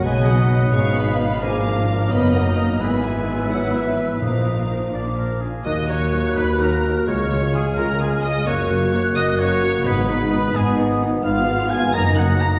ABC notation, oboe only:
X:1
M:6/8
L:1/8
Q:3/8=86
K:Ebm
V:1 name="Oboe"
=B6 | B6 | =B6- | =B3 =d _B A |
e d2 c B2 | d2 A B A e | d2 d e d2 | c c2 A z2 |
f2 a b g b |]